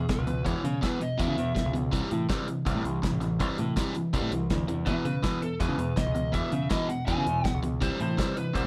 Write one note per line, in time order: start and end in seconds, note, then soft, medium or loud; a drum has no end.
0.00 0.10 G#4 medium
0.09 0.25 E2 medium
0.09 0.26 B2 medium
0.09 0.43 B4 medium
0.09 kick loud
0.09 snare medium
0.09 closed hi-hat medium
0.18 0.46 C#2 medium
0.27 0.43 E2 medium
0.27 0.44 B2 medium
0.27 closed hi-hat medium
0.45 0.62 E2 medium
0.45 0.53 E2 medium
0.45 0.63 B2 medium
0.45 0.63 E3 medium
0.45 0.83 C#5 medium
0.45 kick loud
0.45 closed hi-hat medium
0.63 0.80 E2 medium
0.63 0.81 B2 medium
0.63 0.79 C#3 medium
0.63 closed hi-hat medium
0.81 0.99 E2 medium
0.81 1.00 B2 medium
0.81 1.00 E3 medium
0.81 1.02 B4 medium
0.81 kick loud
0.81 snare loud
0.81 closed hi-hat medium
1.00 1.17 E2 medium
1.00 1.17 B2 medium
1.00 1.19 D#5 medium
1.00 closed hi-hat medium
1.18 1.35 E2 medium
1.18 1.27 E2 medium
1.18 1.36 B2 medium
1.18 1.36 E3 medium
1.18 1.71 E5 medium
1.18 kick loud
1.18 closed hi-hat medium
1.28 1.35 C#3 medium
1.36 1.54 E2 medium
1.36 1.52 E2 medium
1.36 1.54 B2 medium
1.36 closed hi-hat medium
1.55 1.72 E2 medium
1.55 1.72 B2 medium
1.55 kick medium
1.55 snare medium
1.55 closed hi-hat medium
1.66 1.93 C#2 medium
1.73 1.90 E2 medium
1.73 1.91 B2 medium
1.73 closed hi-hat medium
1.92 2.00 C2 medium
1.92 2.09 C3 medium
1.92 2.09 E3 medium
1.92 2.10 G3 medium
1.92 kick loud
1.92 closed hi-hat medium
2.10 2.26 A2 medium
2.10 2.27 C3 medium
2.10 2.27 E3 medium
2.10 closed hi-hat medium
2.29 2.46 C3 medium
2.29 2.47 E3 medium
2.29 2.47 G3 medium
2.29 kick loud
2.29 snare loud
2.29 closed hi-hat medium
2.48 2.64 C3 medium
2.48 2.65 E3 medium
2.48 closed hi-hat medium
2.65 2.74 C2 medium
2.65 2.83 C3 medium
2.65 2.83 E3 medium
2.65 2.84 G3 loud
2.65 kick loud
2.65 closed hi-hat medium
2.75 2.83 A2 medium
2.84 2.99 C2 medium
2.84 3.01 C3 medium
2.84 3.01 E3 medium
2.84 closed hi-hat medium
3.02 3.19 C3 medium
3.02 3.20 E3 medium
3.02 kick loud
3.02 snare loud
3.02 closed hi-hat medium
3.12 3.40 A1 medium
3.20 3.38 C3 medium
3.20 3.38 E3 medium
3.20 snare soft
3.20 closed hi-hat medium
3.40 3.47 C2 medium
3.40 3.57 C3 medium
3.40 3.57 E3 medium
3.40 3.58 G3 medium
3.40 kick loud
3.40 closed hi-hat medium
3.58 3.73 A2 medium
3.58 3.75 C3 medium
3.58 3.75 E3 medium
3.58 closed hi-hat medium
3.76 3.94 C3 medium
3.76 3.94 E3 medium
3.76 3.94 G3 medium
3.76 kick loud
3.76 snare loud
3.76 closed hi-hat medium
3.95 4.12 C3 medium
3.95 4.12 E3 medium
3.95 closed hi-hat medium
4.13 4.21 C2 medium
4.13 4.31 C3 medium
4.13 4.31 E3 medium
4.13 4.31 G3 medium
4.13 kick loud
4.13 closed hi-hat medium
4.22 4.30 A2 medium
4.32 4.48 C2 medium
4.32 4.49 C3 medium
4.32 4.49 E3 medium
4.32 closed hi-hat medium
4.50 4.67 D2 medium
4.50 4.67 C3 medium
4.50 4.67 E3 medium
4.50 kick loud
4.50 snare loud
4.50 closed hi-hat medium
4.68 4.87 E2 medium
4.68 4.85 C3 medium
4.68 4.85 E3 medium
4.68 closed hi-hat medium
4.86 5.04 E2 medium
4.86 4.94 E2 medium
4.86 5.04 B2 medium
4.86 5.05 E3 medium
4.86 5.04 B4 medium
4.86 kick loud
4.86 closed hi-hat medium
5.05 5.21 E2 medium
5.05 5.22 B2 medium
5.05 5.20 C#3 medium
5.05 5.43 B4 medium
5.05 closed hi-hat medium
5.23 5.41 E2 medium
5.23 5.41 B2 medium
5.23 5.41 E3 medium
5.23 kick loud
5.23 snare loud
5.23 closed hi-hat medium
5.42 5.59 E2 medium
5.42 5.59 B2 medium
5.42 5.60 A4 medium
5.42 closed hi-hat medium
5.60 5.77 E2 medium
5.60 5.68 E2 medium
5.60 5.78 B2 medium
5.60 5.78 E3 medium
5.60 5.99 B4 medium
5.60 kick loud
5.60 closed hi-hat medium
5.69 5.76 C#3 medium
5.78 5.93 E2 medium
5.78 5.95 E2 medium
5.78 5.95 B2 medium
5.78 closed hi-hat medium
5.96 6.13 E2 medium
5.96 6.14 B2 medium
5.96 6.33 D#5 medium
5.96 kick loud
5.96 snare loud
5.96 closed hi-hat medium
6.06 6.34 C#2 medium
6.15 6.31 E2 medium
6.15 6.32 B2 medium
6.15 closed hi-hat medium
6.32 6.50 E2 medium
6.32 6.41 E2 medium
6.32 6.51 B2 medium
6.32 6.51 E3 medium
6.32 6.70 E5 medium
6.32 kick loud
6.32 closed hi-hat medium
6.51 6.68 E2 medium
6.51 6.69 B2 medium
6.51 6.67 C#3 medium
6.51 closed hi-hat medium
6.70 6.88 E2 medium
6.70 6.88 B2 medium
6.70 6.88 E3 loud
6.70 6.90 D#5 medium
6.70 kick loud
6.70 snare loud
6.70 closed hi-hat medium
6.89 7.06 E2 medium
6.89 7.06 B2 medium
6.89 7.06 F#5 medium
6.89 closed hi-hat medium
7.06 7.25 E2 medium
7.06 7.15 E2 medium
7.06 7.25 B2 medium
7.06 7.25 E3 medium
7.06 7.47 G#5 medium
7.06 kick loud
7.06 closed hi-hat medium
7.17 7.24 C#3 medium
7.26 7.43 E2 medium
7.26 7.41 E2 medium
7.26 7.43 B2 medium
7.26 closed hi-hat medium
7.44 7.61 E2 medium
7.44 7.61 B2 medium
7.44 7.58 F#5 medium
7.44 kick loud
7.44 snare medium
7.44 closed hi-hat medium
7.54 7.82 C#2 medium
7.63 7.79 E2 medium
7.63 7.79 B2 medium
7.63 closed hi-hat medium
7.81 7.89 C2 medium
7.81 7.98 C3 medium
7.81 7.98 E3 medium
7.81 7.99 G3 medium
7.81 7.99 C5 medium
7.81 kick loud
7.81 closed hi-hat medium
7.99 8.15 A2 medium
7.99 8.16 C3 medium
7.99 8.16 E3 medium
7.99 8.37 C5 medium
7.99 closed hi-hat medium
8.17 8.34 C3 medium
8.17 8.35 E3 medium
8.17 8.36 G3 loud
8.17 kick loud
8.17 snare loud
8.17 closed hi-hat medium
8.36 8.53 C3 medium
8.36 8.53 E3 medium
8.36 8.55 B4 medium
8.36 closed hi-hat medium
8.54 8.62 C2 medium
8.54 8.67 C3 medium
8.54 8.67 E3 medium
8.54 8.67 G3 medium
8.54 8.67 C5 medium
8.54 kick loud
8.54 closed hi-hat medium